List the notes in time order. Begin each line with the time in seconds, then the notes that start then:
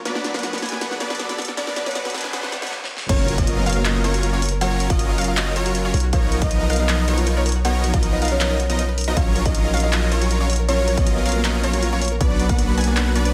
Already playing: F#3, riser
0.05 B2 F#3 B3 D4 B4 D5 B5, snare, closed hi-hat
0.15 F#5, snare
0.24 D5, snare, closed hi-hat
0.34 F#3 A#3 B3 D4 A#4 B4 F#5, snare, closed hi-hat
0.39 closed hi-hat
0.43 F#4, snare, closed hi-hat
0.53 A#3 A#4 B5, snare, closed hi-hat
0.58 closed hi-hat
0.62 F#3 B3 D4 B4 F#5 G#5, snare, closed hi-hat
0.66 closed hi-hat
0.69 A#3 A#4 D5, snare, closed hi-hat
0.81 F#3 B3 D4 B4 F#5 B5, snare, closed hi-hat
0.91 F#5, snare
1.00 F#3 B3 D4 B4 D5, snare, closed hi-hat
1.10 B4, snare, closed hi-hat
1.15 closed hi-hat
1.19 F#4, snare, closed hi-hat
1.29 F#3 B3 D4 B4 D5 B5, snare, closed hi-hat
1.38 F#5, snare, closed hi-hat
1.42 closed hi-hat
1.45 D5, snare, closed hi-hat
1.57 F#3 B3 D4 B4 D5 B5, snare, closed hi-hat, noise sweep
1.67 F#5, snare
1.76 D5, snare, closed hi-hat
1.86 F#3 B3 C#4 D4 B4 C#5 F#5, snare, closed hi-hat
1.91 closed hi-hat
1.95 F#4, snare, closed hi-hat
2.05 B3 B4 B5, snare, closed hi-hat
2.10 closed hi-hat
2.14 F#3 B3 D4 B4 F#5 G#5, snare, closed hi-hat
2.18 closed hi-hat
2.21 G#3 G#4 D5, snare, closed hi-hat
2.33 F#3 B3 D4 B4 F#5 B5, snare, closed hi-hat
2.43 F#5, snare
2.52 D5, snare, closed hi-hat
2.62 F#3 B3 D4 B4 F#5, snare, closed hi-hat
2.67 closed hi-hat
2.71 snare
2.84 snare
2.97 snare
3.09 F#1 F#3 C#4 F4 A#4 C#5 F5, kick, closed hi-hat, crash, impact
3.19 C#5
3.28 A#4, closed hi-hat
3.38 F#3 B3 C#4 F4 F#4 A#4 B4 D#5, kick, closed hi-hat
3.47 F4, closed hi-hat
3.57 B3 B4 F5
3.66 F#3 C#4 F4 A#4 C#5 F5, closed hi-hat
3.70 closed hi-hat
3.73 A#3 A#4, closed hi-hat
3.85 F#3 C#4 F4 A#4 D#5 F5, clap, closed hi-hat
3.95 C#5
4.04 F#3 C#4 F4 A#4 C#5, closed hi-hat
4.14 F#4, closed hi-hat
4.23 F4, closed hi-hat
4.33 F#3 C#4 F4 A#4 C#5 F5
4.42 C#5, closed hi-hat, open hi-hat
4.49 A#4, closed hi-hat
4.61 F#3 C#4 F4 F#4 A#4 C#5 F5 F#5, closed hi-hat
4.71 C#5
4.80 A#4, closed hi-hat
4.90 F#3 C#4 F4 F#4 A#4 D#5 F5, kick, closed hi-hat
4.99 F4, closed hi-hat
5.09 F4 F5
5.18 F#3 C#4 F4 A#4 C#5 F5, closed hi-hat
5.21 closed hi-hat
5.24 F4 A#4 F5, closed hi-hat
5.37 F#3 C#4 F4 A#4 D#5 F5, clap, closed hi-hat
5.47 C#5
5.56 F#3 C#4 F4 A#4 C#5, closed hi-hat
5.66 F#4, closed hi-hat
5.75 F4, closed hi-hat
5.85 F#3 C#4 F4 A#4 C#5 F5
5.94 B1 A#4, closed hi-hat, open hi-hat
6.00 F#4, closed hi-hat
6.13 F3 B3 D#4 F4 A#4 B4 C#5 F5, kick, closed hi-hat
6.23 A#4
6.32 F#4, closed hi-hat
6.42 F3 B3 D#4 F4 A#4 D#5, kick, closed hi-hat
6.51 D#4, closed hi-hat
6.61 D#4 B4 D#5
6.70 F3 B3 D#4 A#4 F5, closed hi-hat
6.73 closed hi-hat
6.76 D#4 F#4 D#5, closed hi-hat
6.89 F3 B3 D#4 A#4 B4 D#5, clap, closed hi-hat
6.99 A#4
7.08 F3 B3 D#4 F#4 A#4 C#5, closed hi-hat
7.18 F4, closed hi-hat
7.27 D#4, closed hi-hat
7.37 F3 B3 D#4 A#4 B4 C#5
7.46 A#4, closed hi-hat, open hi-hat
7.52 F#4, closed hi-hat
7.65 F3 B3 D#4 F#4 A#4 B4 C#5 F#5, closed hi-hat
7.75 A#4
7.84 F#4, closed hi-hat
7.94 F3 B3 D#4 F4 A#4 D#5 F5, kick, closed hi-hat
8.03 D#4, closed hi-hat
8.13 D#4 B4 D#5
8.22 F3 B3 D#4 A#4 F5, closed hi-hat
8.25 closed hi-hat
8.28 C#4 F#4 C#5, closed hi-hat
8.41 F3 B3 D#4 A#4 B4 D#5, clap, closed hi-hat
8.51 A#4
8.60 F#4, closed hi-hat
8.70 F3 B3 D#4 F4 A#4 D#5, closed hi-hat
8.79 D#4, closed hi-hat
8.89 B4
8.98 A#4, closed hi-hat, open hi-hat
9.04 F3 B3 D#4 F#4 A#4 D#5, closed hi-hat
9.17 A#1 F#3 C#4 F4 A#4 C#5 F5, kick, closed hi-hat
9.27 C#5
9.36 A#4, closed hi-hat
9.46 F#3 C#4 D#4 F4 F#4 A#4 D#5, kick, closed hi-hat
9.55 F4, closed hi-hat
9.64 D#4 D#5 F5
9.74 F#3 C#4 F4 A#4 C#5 F5, closed hi-hat
9.77 closed hi-hat
9.80 D#4 A#4 D#5, closed hi-hat
9.93 F#3 C#4 F4 A#4 D#5 F5, clap, closed hi-hat
10.03 C#5
10.12 F#3 C#4 F4 A#4 C#5, closed hi-hat
10.22 F#4, closed hi-hat
10.31 F4, closed hi-hat
10.40 F#3 C#4 F4 A#4 C#5 F5
10.50 C#5, closed hi-hat, open hi-hat
10.56 A#4, closed hi-hat
10.69 F#3 C#4 F4 A#4 C#5 F5, closed hi-hat
10.79 C#5
10.88 A#4, closed hi-hat
10.97 F#3 B3 C#4 F4 F#4 A#4 B4 D#5, kick, closed hi-hat
11.07 F4, closed hi-hat
11.16 B3 B4 F5
11.26 F#3 C#4 F4 A#4 C#5 F5, closed hi-hat
11.29 closed hi-hat
11.32 A#3 A#4, closed hi-hat
11.44 F#3 C#4 F4 A#4 D#5 F5, clap, closed hi-hat
11.55 C#5
11.64 F#3 C#4 F4 A#4 C#5, closed hi-hat
11.73 F#4, closed hi-hat
11.83 F4, closed hi-hat
11.93 F#3 C#4 F4 A#4 C#5 F5
12.02 C#5, closed hi-hat, open hi-hat
12.08 A#4, closed hi-hat
12.21 B1 F#3 B3 D4 B4 D5 B5, kick, closed hi-hat
12.30 F#5
12.40 D5, closed hi-hat
12.49 F#3 A#3 B3 D4 A#4 B4 F#5, kick, closed hi-hat
12.59 F#4, closed hi-hat
12.68 A#3 A#4 B5
12.77 F#3 B3 D4 B4 F#5 G#5, closed hi-hat
12.81 closed hi-hat
12.84 A#3 A#4 D5, closed hi-hat
12.96 F#3 B3 D4 B4 F#5 B5, clap, closed hi-hat
13.06 F#5
13.15 F#3 B3 D4 B4 D5, closed hi-hat
13.25 B4, closed hi-hat